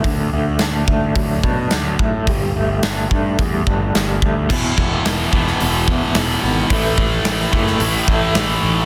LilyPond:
<<
  \new Staff \with { instrumentName = "Clean electric guitar" } { \clef bass \time 4/4 \key d \lydian \tempo 4 = 108 d8 a8 d'8 a8 fis8 d'8 fis8 a8 | g8 a8 d'8 a8 g8 d'8 g8 a8 | <e, b, e>8 <e, b,>8 <e, b,>8 <e, b, e>8 <e, b,>8 <e, b, e>8 <e, b,>8 <e, b,>8 | <a, e a>8 <a, e>8 <a, e>8 <a, e a>8 <a, e>8 <a, e a>8 <a, e>8 <a, e>8 | }
  \new Staff \with { instrumentName = "Distorted electric guitar" } { \clef bass \time 4/4 \key d \lydian r1 | r1 | <e, b, e>4. <e, b, e>2~ <e, b, e>8 | <a, e a>4. <a, e a>2~ <a, e a>8 | }
  \new Staff \with { instrumentName = "Picked electric bass" } { \clef bass \time 4/4 \key d \lydian d,8 d,8 d,8 d,8 d,8 b,8 d,8 a,8 | g,,8 g,,8 g,,8 g,8 e,8 g,,8 g,,8 d,8 | e,,8 e,,8 e,,8 e,,8 e,,4 e,,8 gis,,8 | a,,8 a,,8 a,,8 fis,,8 a,,8 a,,8 a,,8 a,,8 | }
  \new DrumStaff \with { instrumentName = "Drums" } \drummode { \time 4/4 <hho bd>4 <hho sn>8 bd8 <hho bd>8 bd8 <hho sn>8 bd8 | <hho bd>4 <hho sn>8 bd8 <hho bd>8 bd8 <hho sn>8 bd8 | <cymc bd>8 bd8 <hho sn>8 bd16 sn16 hho8 bd8 <hho sn>4 | <hho bd>8 bd8 <hho sn>8 bd16 sn16 hho8 bd8 <hho sn>4 | }
>>